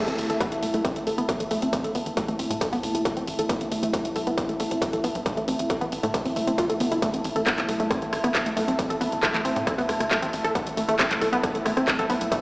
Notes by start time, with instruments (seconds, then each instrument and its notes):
Already playing: ambient pad A3 E4 E5 A5
0.08 analog synth bass A1, synth arpeggio sound C4, closed hi-hat
0.18 analog synth bass A1, open hi-hat
0.30 analog synth bass A1, synth arpeggio sound A4, closed hi-hat
0.40 synth arpeggio sound B3, kick, closed hi-hat
0.52 analog synth bass C2, closed hi-hat
0.62 analog synth bass C2, synth arpeggio sound A3, open hi-hat
0.74 analog synth bass C2, synth arpeggio sound A3, closed hi-hat
0.85 synth arpeggio sound C4, kick, closed hi-hat
0.96 analog synth bass A1, closed hi-hat
1.07 analog synth bass A1, synth arpeggio sound A4, open hi-hat
1.18 analog synth bass A1, synth arpeggio sound B3, closed hi-hat
1.29 kick, closed hi-hat
1.40 analog synth bass B1, synth arpeggio sound A3, closed hi-hat
1.51 analog synth bass B1, synth arpeggio sound A3, open hi-hat
1.62 analog synth bass B1, synth arpeggio sound C4, closed hi-hat
1.73 kick, closed hi-hat
1.84 analog synth bass A1, synth arpeggio sound A4, closed hi-hat
1.95 analog synth bass A1, synth arpeggio sound B3, open hi-hat
2.06 analog synth bass A1, closed hi-hat
2.17 synth arpeggio sound A3, kick, closed hi-hat
2.28 analog synth bass A1, synth arpeggio sound A3, closed hi-hat
2.39 analog synth bass A1, synth arpeggio sound C4, open hi-hat
2.50 analog synth bass A2, closed hi-hat
2.61 synth arpeggio sound A4, kick, closed hi-hat
2.72 analog synth bass D2, synth arpeggio sound B3, open hi-hat
2.83 analog synth bass D2, open hi-hat
2.95 analog synth bass D2, synth arpeggio sound A3, closed hi-hat
3.05 synth arpeggio sound A3, kick, closed hi-hat
3.17 analog synth bass A1, synth arpeggio sound C4, closed hi-hat
3.27 analog synth bass A1, open hi-hat
3.39 analog synth bass A1, synth arpeggio sound A4, closed hi-hat
3.49 synth arpeggio sound B3, kick, closed hi-hat
3.61 analog synth bass A1, closed hi-hat
3.71 analog synth bass A1, synth arpeggio sound A3, open hi-hat
3.83 analog synth bass A1, synth arpeggio sound A3, closed hi-hat
3.93 synth arpeggio sound C4, kick, closed hi-hat
4.05 analog synth bass C2, closed hi-hat
4.16 analog synth bass C2, synth arpeggio sound A4, open hi-hat
4.27 analog synth bass C2, synth arpeggio sound B3, closed hi-hat
4.38 kick, closed hi-hat
4.49 analog synth bass A1, synth arpeggio sound A3, closed hi-hat
4.60 analog synth bass A1, synth arpeggio sound A3, open hi-hat
4.71 analog synth bass A1, synth arpeggio sound C4, closed hi-hat
4.82 kick, closed hi-hat
4.93 analog synth bass B1, synth arpeggio sound A4, closed hi-hat
5.04 analog synth bass B1, synth arpeggio sound B3, open hi-hat
5.15 analog synth bass B1, closed hi-hat
5.26 synth arpeggio sound A3, kick, closed hi-hat
5.37 analog synth bass A1, synth arpeggio sound A3, closed hi-hat
5.48 analog synth bass A1, synth arpeggio sound C4, open hi-hat
5.59 analog synth bass A1, closed hi-hat
5.70 synth arpeggio sound A4, kick, closed hi-hat
5.81 analog synth bass A1, synth arpeggio sound B3, closed hi-hat
5.92 analog synth bass A1, open hi-hat
6.03 analog synth bass A2, synth arpeggio sound A3, closed hi-hat
6.14 synth arpeggio sound A3, kick, closed hi-hat
6.25 analog synth bass G1, synth arpeggio sound C4, open hi-hat
6.36 analog synth bass G1, synth arpeggio sound A3, open hi-hat
6.47 analog synth bass G1, synth arpeggio sound C4, closed hi-hat
6.58 synth arpeggio sound F4, kick, closed hi-hat
6.69 analog synth bass G1, synth arpeggio sound A4, closed hi-hat
6.80 analog synth bass G1, synth arpeggio sound B3, open hi-hat
6.92 analog synth bass G1, synth arpeggio sound E4, closed hi-hat
7.02 synth arpeggio sound A3, kick, closed hi-hat
7.14 analog synth bass A1, synth arpeggio sound C4, closed hi-hat
7.24 analog synth bass A1, open hi-hat
7.36 analog synth bass A1, synth arpeggio sound A4, closed hi-hat
7.46 synth arpeggio sound B3, kick, cross-stick, clap, closed hi-hat
7.58 analog synth bass C2, clap, closed hi-hat
7.69 analog synth bass C2, synth arpeggio sound A3, open hi-hat
7.80 analog synth bass C2, synth arpeggio sound A3, closed hi-hat
7.91 synth arpeggio sound C4, kick, cross-stick, closed hi-hat
8.02 analog synth bass A1, closed hi-hat
8.13 analog synth bass A1, synth arpeggio sound A4, cross-stick, open hi-hat
8.24 analog synth bass A1, synth arpeggio sound B3, cross-stick, closed hi-hat
8.35 kick, clap, closed hi-hat
8.46 analog synth bass B1, synth arpeggio sound A3, closed hi-hat
8.57 analog synth bass B1, synth arpeggio sound A3, open hi-hat
8.68 analog synth bass B1, synth arpeggio sound C4, closed hi-hat
8.79 kick, closed hi-hat
8.90 analog synth bass A1, synth arpeggio sound A4, closed hi-hat
9.01 analog synth bass A1, synth arpeggio sound B3, open hi-hat
9.12 analog synth bass A1, closed hi-hat
9.23 synth arpeggio sound A3, kick, cross-stick, clap, closed hi-hat
9.34 analog synth bass A1, synth arpeggio sound A3, clap, closed hi-hat
9.45 analog synth bass A1, synth arpeggio sound C4, open hi-hat
9.56 analog synth bass A2, closed hi-hat
9.67 synth arpeggio sound A4, kick, cross-stick, closed hi-hat
9.78 analog synth bass D2, synth arpeggio sound B3, open hi-hat
9.89 analog synth bass D2, cross-stick, open hi-hat
10.00 analog synth bass D2, synth arpeggio sound A3, cross-stick, closed hi-hat
10.11 synth arpeggio sound A3, kick, clap, closed hi-hat
10.22 analog synth bass A1, synth arpeggio sound C4, closed hi-hat
10.33 analog synth bass A1, open hi-hat
10.44 analog synth bass A1, synth arpeggio sound A4, closed hi-hat
10.55 synth arpeggio sound B3, kick, closed hi-hat
10.67 analog synth bass A1, closed hi-hat
10.77 analog synth bass A1, synth arpeggio sound A3, open hi-hat
10.88 analog synth bass A1, synth arpeggio sound A3, closed hi-hat
10.99 synth arpeggio sound C4, kick, cross-stick, clap, closed hi-hat
11.11 analog synth bass C2, clap, closed hi-hat
11.21 analog synth bass C2, synth arpeggio sound A4, open hi-hat
11.33 analog synth bass C2, synth arpeggio sound B3, closed hi-hat
11.43 kick, cross-stick, closed hi-hat
11.55 analog synth bass A1, synth arpeggio sound A3, closed hi-hat
11.65 analog synth bass A1, synth arpeggio sound A3, cross-stick, open hi-hat
11.77 analog synth bass A1, synth arpeggio sound C4, cross-stick, closed hi-hat
11.88 kick, clap, closed hi-hat
11.99 analog synth bass B1, synth arpeggio sound A4, closed hi-hat
12.10 analog synth bass B1, synth arpeggio sound B3, open hi-hat
12.21 analog synth bass B1, closed hi-hat
12.32 synth arpeggio sound A3, kick, closed hi-hat